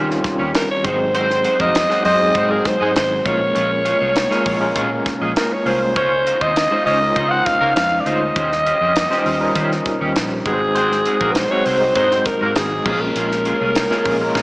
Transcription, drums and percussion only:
0.11 snare soft
0.24 kick loud
0.24 snare soft
0.24 closed hi-hat medium
0.55 snare loud
0.55 closed hi-hat loud
0.84 kick loud
0.84 closed hi-hat medium
1.15 closed hi-hat medium
1.30 snare soft
1.44 closed hi-hat medium
1.60 kick medium
1.75 snare loud
1.75 closed hi-hat loud
1.91 snare soft
2.05 open hi-hat medium
2.35 kick medium
2.35 closed hi-hat medium
2.65 kick loud
2.65 snare soft
2.65 closed hi-hat medium
2.96 snare loud
2.96 closed hi-hat medium
3.26 kick loud
3.26 closed hi-hat medium
3.56 closed hi-hat medium
3.86 closed hi-hat medium
4.16 snare loud
4.16 closed hi-hat loud
4.31 snare soft
4.46 kick medium
4.46 open hi-hat medium
4.76 kick medium
4.76 closed hi-hat medium
5.06 kick loud
5.06 snare soft
5.06 closed hi-hat medium
5.36 snare loud
5.36 closed hi-hat loud
5.66 open hi-hat medium
5.96 kick loud
5.96 closed hi-hat medium
6.27 closed hi-hat medium
6.41 kick medium
6.56 snare loud
6.56 closed hi-hat loud
6.87 open hi-hat medium
7.16 kick medium
7.16 closed hi-hat loud
7.46 kick loud
7.46 snare soft
7.46 closed hi-hat medium
7.76 snare loud
7.76 closed hi-hat loud
8.06 closed hi-hat medium
8.36 kick loud
8.36 closed hi-hat medium
8.52 snare soft
8.66 closed hi-hat medium
8.96 snare loud
8.96 closed hi-hat loud
9.11 snare soft
9.26 open hi-hat medium
9.55 kick medium
9.55 closed hi-hat medium
9.72 snare soft
9.86 kick loud
9.86 snare soft
9.86 closed hi-hat medium
10.16 snare loud
10.16 closed hi-hat loud
10.46 kick loud
10.46 closed hi-hat medium
10.76 closed hi-hat medium
10.92 snare soft
11.05 closed hi-hat medium
11.21 kick medium
11.35 snare loud
11.35 closed hi-hat loud
11.66 open hi-hat medium
11.95 kick medium
11.95 closed hi-hat loud
12.11 snare soft
12.25 kick medium
12.25 snare soft
12.25 closed hi-hat medium
12.56 snare loud
12.56 closed hi-hat loud
12.86 kick loud
12.86 crash medium
13.16 closed hi-hat medium
13.31 snare soft
13.45 closed hi-hat medium
13.75 snare loud
13.75 closed hi-hat loud
13.91 snare soft
14.05 kick medium
14.05 open hi-hat medium
14.35 kick medium
14.35 snare medium

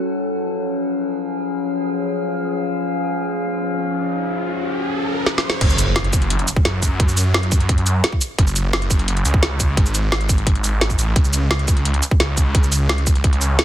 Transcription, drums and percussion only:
5.26 snare medium
5.38 snare medium
5.50 snare medium
5.61 kick loud
5.61 closed hi-hat loud
5.61 crash loud
5.70 shaker soft
5.78 closed hi-hat medium
5.78 shaker medium
5.96 snare loud
5.96 closed hi-hat loud
6.04 closed hi-hat soft
6.13 kick loud
6.13 closed hi-hat medium
6.13 shaker medium
6.22 closed hi-hat soft
6.30 closed hi-hat loud
6.39 closed hi-hat soft
6.48 closed hi-hat medium
6.48 shaker medium
6.56 kick loud
6.65 snare loud
6.65 closed hi-hat loud
6.82 kick medium
6.82 closed hi-hat medium
6.82 shaker medium
7.00 kick loud
7.00 closed hi-hat loud
7.09 shaker soft
7.17 closed hi-hat medium
7.17 shaker medium
7.34 snare loud
7.34 closed hi-hat loud
7.43 closed hi-hat soft
7.52 kick loud
7.52 closed hi-hat medium
7.52 shaker medium
7.60 closed hi-hat soft
7.69 kick loud
7.69 closed hi-hat loud
7.78 closed hi-hat soft
7.87 closed hi-hat medium
7.87 shaker medium
8.04 snare loud
8.04 closed hi-hat loud
8.12 kick medium
8.21 closed hi-hat medium
8.21 shaker medium
8.38 kick loud
8.38 closed hi-hat loud
8.47 shaker soft
8.56 closed hi-hat medium
8.56 shaker medium
8.73 snare loud
8.73 closed hi-hat loud
8.82 closed hi-hat soft
8.91 kick loud
8.91 closed hi-hat medium
8.91 shaker medium
8.99 closed hi-hat soft
9.08 closed hi-hat medium
9.17 closed hi-hat soft
9.25 closed hi-hat medium
9.25 shaker medium
9.34 kick loud
9.43 snare loud
9.43 closed hi-hat loud
9.60 kick medium
9.60 closed hi-hat medium
9.60 shaker medium
9.77 kick loud
9.77 closed hi-hat medium
9.86 shaker soft
9.95 closed hi-hat medium
9.95 shaker medium
10.12 snare loud
10.12 closed hi-hat medium
10.21 closed hi-hat soft
10.29 kick loud
10.29 closed hi-hat medium
10.29 shaker medium
10.38 closed hi-hat soft
10.47 kick loud
10.47 closed hi-hat medium
10.55 closed hi-hat soft
10.64 closed hi-hat medium
10.64 shaker medium
10.81 snare loud
10.81 closed hi-hat medium
10.90 kick medium
10.90 shaker soft
10.99 closed hi-hat medium
10.99 shaker medium
11.16 kick loud
11.16 closed hi-hat medium
11.25 shaker soft
11.33 closed hi-hat medium
11.33 shaker medium
11.51 snare loud
11.51 closed hi-hat medium
11.59 closed hi-hat soft
11.68 kick loud
11.68 closed hi-hat medium
11.68 shaker medium
11.77 closed hi-hat soft
11.85 closed hi-hat medium
11.94 closed hi-hat soft
12.03 closed hi-hat medium
12.03 shaker medium
12.11 kick loud
12.20 snare loud
12.20 closed hi-hat medium
12.37 kick medium
12.37 closed hi-hat medium
12.37 shaker medium
12.55 kick loud
12.55 closed hi-hat medium
12.63 shaker soft
12.72 closed hi-hat medium
12.72 shaker medium
12.89 snare loud
12.89 closed hi-hat medium
12.98 closed hi-hat soft
13.07 kick loud
13.07 closed hi-hat medium
13.07 shaker medium
13.15 closed hi-hat soft
13.24 kick loud
13.24 closed hi-hat medium
13.33 closed hi-hat soft
13.41 closed hi-hat medium
13.41 shaker medium
13.59 snare loud
13.59 closed hi-hat medium

